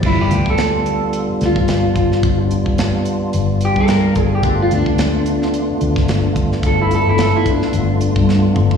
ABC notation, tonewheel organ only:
X:1
M:4/4
L:1/8
Q:"Swing 16ths" 1/4=109
K:Gmix
V:1 name="Tonewheel organ"
[G,B,DF]8- | [G,B,DF]8 | [A,B,DF]8- | [A,B,DF]8 |]